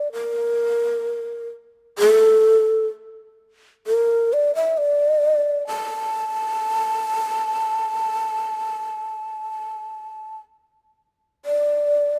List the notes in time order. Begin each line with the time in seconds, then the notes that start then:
Already playing: D5
0.13 A#4
1.99 A4
3.87 A#4
4.33 D5
4.55 E5
4.78 D5
5.67 A5
11.46 D5